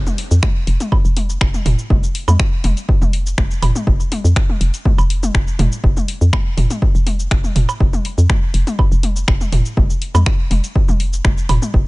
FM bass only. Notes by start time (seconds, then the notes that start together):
0.31 F2
0.67 F1
1.05 F1
1.41 F1
1.66 F1
1.90 F1
2.28 F2
2.64 F1
3.02 F1
3.38 F1
3.62 F1
3.87 F1
4.24 F2
4.61 F1
4.98 F1
5.35 F1
5.59 F1
5.84 F1
6.21 F2
6.57 F1
6.95 F1
7.31 F1
7.56 F1
7.80 F1
8.18 F2
8.54 F1
8.92 F1
9.28 F1
9.52 F1
9.77 F1
10.15 F2
10.51 F1
10.89 F1
11.25 F1
11.49 F1
11.74 F1